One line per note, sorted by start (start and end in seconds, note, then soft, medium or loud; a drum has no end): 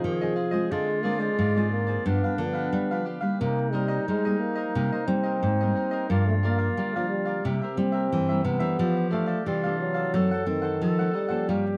0.00 0.72 F3 medium
0.00 0.15 C4 medium
0.00 0.15 D#4 medium
0.00 0.15 G#4 medium
0.00 0.19 G#4 medium
0.00 0.72 G#4 loud
0.00 0.19 C5 medium
0.00 0.18 D#5 medium
0.04 0.68 C3 medium
0.04 0.33 D#3 medium
0.21 0.50 C4 medium
0.21 0.50 D#4 medium
0.21 0.50 G#4 medium
0.21 0.35 G#4 medium
0.21 0.36 C5 medium
0.21 0.37 D#5 medium
0.36 0.52 F4 soft
0.36 0.53 G#4 soft
0.36 0.51 C5 soft
0.36 0.50 D#5 soft
0.51 0.99 G#3 medium
0.51 0.99 C4 medium
0.51 0.99 F4 medium
0.51 0.70 G#4 medium
0.51 0.69 C5 medium
0.51 0.68 D#5 medium
0.71 1.29 D3 medium
0.71 1.36 D3 medium
0.71 1.05 G#3 medium
0.71 2.08 F4 loud
0.71 0.87 F4 soft
0.71 0.87 G#4 soft
0.71 0.88 C5 soft
0.71 0.88 D5 medium
0.90 muted cavaquinho stroke soft
1.03 1.36 G#3 medium
1.03 1.21 A#3 medium
1.03 1.36 C4 soft
1.03 1.20 F4 medium
1.03 1.37 F4 medium
1.03 1.20 G#4 medium
1.03 1.19 C5 medium
1.03 1.18 D5 medium
1.19 1.70 G#3 medium
1.19 1.37 G#4 soft
1.19 1.37 C5 medium
1.19 1.36 D5 medium
1.39 1.96 G#2 medium
1.39 2.03 D3 soft
1.39 1.54 F4 soft
1.39 1.55 G#4 soft
1.39 1.55 C5 soft
1.39 1.55 D5 medium
1.56 2.01 G#3 medium
1.56 2.01 C4 medium
1.56 2.01 F4 medium
1.56 1.88 G#4 medium
1.56 1.87 C5 medium
1.56 1.86 D5 medium
1.71 2.07 A#3 medium
1.87 2.05 G#4 medium
1.87 2.04 C5 medium
1.87 2.03 D5 medium
2.05 2.20 G2 medium
2.05 2.70 G2 medium
2.05 2.26 F3 soft
2.05 2.37 B3 medium
2.05 2.26 B3 soft
2.05 3.14 D4 medium
2.05 2.22 D4 soft
2.05 2.26 D4 medium
2.05 2.22 G4 soft
2.05 2.22 B4 soft
2.05 2.23 F5 soft
2.24 2.38 G4 medium
2.24 2.39 B4 medium
2.24 2.39 F5 medium
2.38 2.67 D3 medium
2.38 2.71 F3 medium
2.38 3.09 B3 medium
2.38 2.71 B3 medium
2.38 2.71 D4 medium
2.38 muted cavaquinho stroke soft
2.53 2.88 G4 medium
2.53 2.88 B4 medium
2.53 2.87 F5 medium
2.73 3.37 D3 medium
2.73 3.02 G3 medium
2.91 3.19 F3 medium
2.91 3.19 B3 medium
2.91 3.19 D4 medium
2.91 3.05 G4 medium
2.91 3.06 B4 medium
2.91 3.06 F5 medium
3.05 3.21 D4 soft
3.05 3.22 G4 soft
3.05 3.21 B4 soft
3.05 3.19 F5 soft
3.21 3.68 G3 medium
3.21 3.68 A#3 medium
3.21 3.68 D#4 medium
3.21 3.39 G4 soft
3.21 3.39 B4 medium
3.21 3.38 F5 medium
3.40 3.98 C3 medium
3.40 4.05 C3 medium
3.40 3.74 A#3 medium
3.40 3.56 D#4 medium
3.40 5.39 D#4 medium
3.40 3.56 A#4 soft
3.40 3.57 C5 medium
3.40 3.57 D#5 medium
3.58 muted cavaquinho stroke soft
3.73 4.07 G3 medium
3.73 4.05 G3 medium
3.73 4.06 A#3 medium
3.73 3.89 D#4 medium
3.73 4.06 D#4 medium
3.73 3.89 A#4 medium
3.73 3.88 C5 medium
3.73 3.87 D#5 medium
3.88 4.06 A#4 medium
3.88 4.06 C5 medium
3.88 4.05 D#5 medium
4.08 4.65 G3 medium
4.08 4.41 G#3 medium
4.08 4.23 D#4 soft
4.08 4.24 A#4 medium
4.08 4.24 C5 medium
4.08 4.24 D#5 medium
4.25 4.71 G3 medium
4.25 4.71 A#3 medium
4.25 4.71 D#4 medium
4.25 4.57 A#4 medium
4.25 4.56 C5 medium
4.25 4.54 D#5 medium
4.40 5.07 A#3 medium
4.56 4.74 A#4 medium
4.56 4.73 C5 medium
4.56 4.73 D#5 medium
4.75 5.40 C3 medium
4.75 4.90 C3 medium
4.75 4.95 G3 soft
4.75 4.96 A#3 medium
4.75 4.91 D#4 soft
4.75 4.96 D#4 medium
4.75 4.91 A#4 soft
4.75 4.92 C5 medium
4.75 4.91 D#5 medium
4.92 5.08 A#4 medium
4.92 5.08 C5 medium
4.92 5.08 D#5 medium
5.07 5.37 G3 loud
5.07 5.54 G3 medium
5.07 5.54 A#3 medium
5.07 6.05 C4 loud
5.07 5.54 D#4 medium
5.07 muted cavaquinho stroke soft
5.23 5.58 A#4 medium
5.23 5.58 C5 medium
5.23 5.57 D#5 medium
5.43 5.71 G#2 medium
5.43 6.12 D#4 medium
5.61 6.06 G3 medium
5.61 6.06 A#3 medium
5.61 6.06 D#4 medium
5.61 5.75 A#4 medium
5.61 5.76 C5 medium
5.61 5.76 D#5 medium
5.75 5.92 D#4 soft
5.75 5.92 A#4 soft
5.75 5.91 C5 soft
5.75 5.90 D#5 soft
5.91 6.09 A#4 medium
5.91 6.08 C5 medium
5.91 6.08 D#5 medium
6.09 6.67 G2 medium
6.09 6.75 G2 medium
6.09 6.39 F3 medium
6.09 6.25 A#3 loud
6.09 6.39 A#3 medium
6.09 6.40 D4 medium
6.09 7.44 F4 medium
6.09 6.26 G4 soft
6.09 6.26 A#4 soft
6.09 6.27 D5 medium
6.09 6.27 F5 medium
6.27 6.35 A3 medium
6.27 muted cavaquinho stroke soft
6.42 6.75 F3 medium
6.42 6.96 A#3 medium
6.42 6.75 A#3 medium
6.42 6.75 D4 medium
6.42 6.59 G4 medium
6.42 6.60 A#4 medium
6.42 6.59 D5 medium
6.42 6.57 F5 medium
6.58 6.76 A#4 soft
6.58 6.76 D5 medium
6.58 6.75 F5 medium
6.77 7.42 D3 soft
6.77 7.35 G3 medium
6.77 6.93 G4 soft
6.77 6.94 A#4 soft
6.77 6.94 D5 medium
6.77 6.94 F5 medium
6.95 7.09 F3 medium
6.95 7.40 F3 medium
6.95 7.41 A#3 medium
6.95 7.41 D4 medium
6.95 7.27 A#4 medium
6.95 7.25 D5 medium
6.95 7.24 F5 medium
7.09 7.48 G3 medium
7.25 7.44 A#4 medium
7.25 7.43 D5 medium
7.25 7.42 F5 medium
7.44 7.59 C3 medium
7.44 8.09 C3 medium
7.44 7.65 G3 medium
7.44 7.65 A#3 medium
7.44 7.60 E4 soft
7.44 7.66 E4 medium
7.44 8.42 G4 medium
7.44 7.61 A#4 soft
7.44 7.61 C5 soft
7.44 7.61 E5 medium
7.62 7.76 A#4 medium
7.62 7.77 C5 medium
7.62 7.77 E5 medium
7.76 8.07 G3 medium
7.76 8.23 G3 soft
7.76 8.24 A#3 medium
7.76 8.45 C4 medium
7.76 8.24 E4 medium
7.76 muted cavaquinho stroke soft
7.92 8.27 A#4 medium
7.92 8.27 C5 medium
7.92 8.26 E5 medium
8.12 8.77 G2 medium
8.12 8.41 E3 medium
8.29 8.58 G3 medium
8.29 8.58 A#3 medium
8.29 8.59 E4 medium
8.29 8.43 A#4 soft
8.29 8.44 C5 medium
8.29 8.45 E5 medium
8.44 8.60 C3 medium
8.44 9.11 B3 loud
8.44 8.60 E4 soft
8.44 8.61 A#4 soft
8.44 8.60 C5 soft
8.44 8.58 E5 soft
8.59 8.77 E3 medium
8.59 9.07 A3 medium
8.59 9.07 D4 medium
8.59 9.08 G4 medium
8.59 8.78 A#4 soft
8.59 8.77 C5 medium
8.59 8.77 E5 medium
8.78 9.37 F3 medium
8.78 9.44 F3 medium
8.78 8.95 D4 soft
8.78 9.48 G4 medium
8.78 8.95 A4 medium
8.78 8.95 D5 medium
8.78 8.96 F5 soft
8.97 muted cavaquinho stroke soft
9.11 9.44 A3 medium
9.11 9.45 A3 soft
9.11 9.28 D4 medium
9.11 9.45 D4 medium
9.11 9.45 G4 medium
9.11 9.27 A4 medium
9.11 9.26 D5 medium
9.11 9.25 F5 medium
9.26 9.45 A4 medium
9.26 9.44 D5 medium
9.26 9.44 F5 medium
9.45 10.11 C3 soft
9.45 10.04 E3 medium
9.45 9.78 G3 medium
9.45 9.62 D4 soft
9.45 10.16 F4 medium
9.45 9.62 A4 soft
9.45 9.63 D5 soft
9.45 9.62 F5 medium
9.64 10.10 A3 medium
9.64 10.10 D4 medium
9.64 10.10 G4 medium
9.64 9.96 A4 soft
9.64 9.94 D5 medium
9.64 9.93 F5 medium
9.79 10.43 F#3 medium
9.94 10.13 A4 medium
9.94 10.12 D5 medium
9.94 10.11 F5 medium
10.14 10.78 F#2 medium
10.14 10.34 D#3 medium
10.14 10.28 F#3 medium
10.14 10.35 A3 medium
10.14 10.35 C4 medium
10.14 10.30 D#4 soft
10.14 10.82 A4 loud
10.14 10.30 A4 soft
10.14 10.31 C5 soft
10.14 10.30 F#5 medium
10.31 10.46 A4 soft
10.31 10.46 C5 medium
10.31 10.46 F#5 medium
10.46 10.79 D#3 medium
10.46 11.11 D#3 medium
10.46 10.79 A3 medium
10.46 10.76 C4 medium
10.46 10.79 C4 medium
10.46 muted cavaquinho stroke soft
10.62 10.97 A4 medium
10.62 10.96 C5 medium
10.62 10.96 F#5 medium
10.82 11.10 F3 medium
10.82 11.50 A4 loud
10.99 11.27 D#3 medium
10.99 11.27 A3 medium
10.99 11.28 C4 medium
10.99 11.13 A4 medium
10.99 11.14 C5 medium
10.99 11.14 F#5 medium
11.13 11.77 G3 medium
11.13 11.30 D#4 soft
11.13 11.30 A4 soft
11.13 11.29 C5 soft
11.13 11.27 F#5 soft
11.28 11.76 F3 medium
11.28 11.76 A#3 medium
11.28 11.76 C#4 medium
11.28 11.47 A4 medium
11.28 11.47 C5 medium
11.28 11.46 F#5 medium
11.48 11.77 G2 medium
11.48 11.77 G3 medium
11.48 11.64 F4 medium
11.48 11.77 G4 loud
11.48 11.65 A#4 medium
11.48 11.65 C#5 medium
11.48 11.65 G5 medium
11.66 muted cavaquinho stroke soft